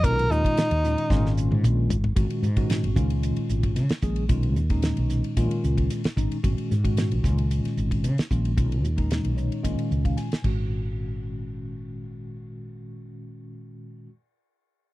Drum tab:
CC |----------------|----------------|----------------|----------------|
RD |xx-xxx-x--------|xx-xxx-xxx-xxx-x|xx-xxx-xxx-xxx-x|xx-xxx-xxx-xxx-x|
HH |p-p-p-p-p-p-p-p-|p-p-p-p-p-p-p-p-|p-p-p-p-p-p-p-p-|p-p-p-p-p-p-p-p-|
SD |----o-o-oo------|----o-------oo--|----o-o-----oo--|--o-o-o--o---o--|
T1 |-----------o----|----------------|----------------|----------------|
T2 |------------o---|----------------|----------------|----------------|
FT |--------------oo|----------------|----------------|----------------|
BD |o--o----o-------|o--o--o----o--o-|o--o----o--o--o-|o--o--o----o--o-|

CC |--------------x-|----------------|----------------|
RD |xx-xxx-xxx-xxx--|----------------|----------------|
HH |p-p-p-p-p-p-p---|----------------|----------------|
SD |----o-------oo--|----------------|----------------|
T1 |----------------|----------------|----------------|
T2 |----------------|----------------|----------------|
FT |----------------|----------------|----------------|
BD |o--o----o--o--o-|----------------|----------------|